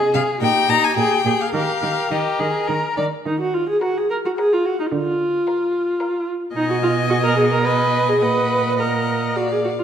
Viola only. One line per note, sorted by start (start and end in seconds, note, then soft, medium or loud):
0.00 0.41 G#4 medium
0.42 1.52 G4 medium
1.54 2.95 A#4 soft
3.27 3.39 D#4 soft
3.41 3.56 F#4 soft
3.54 3.68 F4 soft
3.69 3.82 G#4 medium
3.83 3.99 F#4 medium
3.98 4.10 G#4 medium
4.11 4.16 A#4 medium
4.26 4.31 F#4 medium
4.38 4.55 G#4 medium
4.53 4.67 F4 medium
4.65 4.79 F#4 medium
4.80 4.85 D#4 medium
4.92 6.25 F4 medium
6.56 6.68 D#4 medium
6.70 6.75 F#4 medium
6.83 6.91 F4 medium
7.10 7.15 F#4 medium
7.24 7.36 A#4 medium
7.37 7.42 G#4 medium
7.52 7.66 A#4 medium
7.65 8.11 B4 medium
8.09 8.23 G#4 medium
8.22 8.81 B4 medium
8.80 9.38 A#4 soft
9.36 9.50 F#4 medium
9.52 9.57 G#4 soft
9.64 9.70 F#4 soft
9.79 9.84 F4 soft